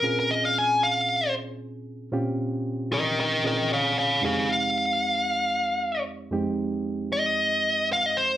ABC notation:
X:1
M:4/4
L:1/16
Q:"Swing 16ths" 1/4=114
K:Fm
V:1 name="Lead electric guitar"
B B e f a2 f4 z6 | z6 [Be]2 [Be]2 [Be]2 [df]2 [df]2 | [Af]2 f12 z2 | z6 e6 f e c2 |]
V:2 name="Reed electric piano"
[B,,CDFA]16 | [B,,CDFG]8- [B,,CDFG]2 [B,,CDFA]6 | [F,,A,CEG]16 | [F,,A,CEG]16 |]